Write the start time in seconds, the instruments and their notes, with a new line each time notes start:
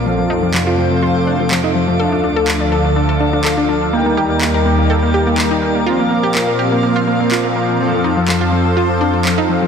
Already playing: analog synth pad F4, synth texture D5 D6
0.06 analog synth pad F2 C3 A3 C5, supersaw synth F3 C4 A4 F5, synth pluck F3
0.19 synth pluck F3
0.30 synth pluck D#4
0.43 synth pluck F3
0.54 synth pluck F3, clap
0.67 synth pluck F4
0.78 synth pluck F3
0.91 synth pluck F3
1.03 synth pluck F4
1.15 synth pluck F3
1.27 synth pluck D4
1.40 synth pluck F3
1.51 synth pluck F3, clap
1.64 synth pluck D#4
1.75 synth pluck F3
1.88 synth pluck F3
1.99 analog synth pad D2 D3 A4, supersaw synth F3 D4 A4 F5, synth pluck A4
2.12 synth pluck D4
2.24 synth pluck D4
2.36 synth pluck A4
2.48 synth pluck D4, clap
2.60 synth pluck D4
2.72 synth pluck A4
2.85 synth pluck D4
2.96 synth pluck D4
3.09 synth pluck A4
3.20 synth pluck D4
3.33 synth pluck D4
3.45 synth pluck A4, clap
3.58 synth pluck D4
3.69 synth pluck D4
3.93 analog synth pad D#2 D#3 A#3 G4 A#4, supersaw synth G3 D#4 A#4 G5, synth pluck A#3
4.06 synth pluck A#3
4.17 synth pluck G4
4.30 synth pluck A#3
4.41 synth pluck A#3, clap
4.54 synth pluck A#4
4.66 synth pluck A#3
4.78 synth pluck A#3
4.90 synth pluck A4
5.03 synth pluck A#3
5.14 synth pluck G4
5.27 synth pluck A#3
5.38 synth pluck A#3, clap
5.51 synth pluck D#4
5.62 synth pluck A#3
5.75 synth pluck A#3
5.86 analog synth pad A#2 F3 C4 F5, supersaw synth F3 C4 A#4 F5, synth pluck F4
5.99 synth pluck A#3
6.11 synth pluck A#3
6.23 synth pluck G4
6.35 synth pluck A#3, clap
6.48 synth pluck A#3
6.59 synth pluck G4
6.72 synth pluck A#3
6.83 synth pluck A#3
6.96 synth pluck F4
7.07 synth pluck A#3
7.20 synth pluck A#3
7.32 synth pluck F4, clap
7.44 synth pluck A#3
7.56 synth pluck A#3
7.80 analog synth pad F2 A4 C5, supersaw synth F3 C4 A4 F5, synth pluck F3
7.93 synth pluck F3
8.04 synth pluck D#4
8.17 synth pluck F3
8.28 synth pluck F3, clap
8.41 synth pluck F4
8.52 synth pluck F3
8.65 synth pluck F3
8.77 synth pluck F4
8.89 synth pluck F3
9.01 synth pluck D4
9.14 synth pluck F3
9.25 synth pluck F3, clap
9.38 synth pluck D#4
9.49 synth pluck F3
9.62 synth pluck F3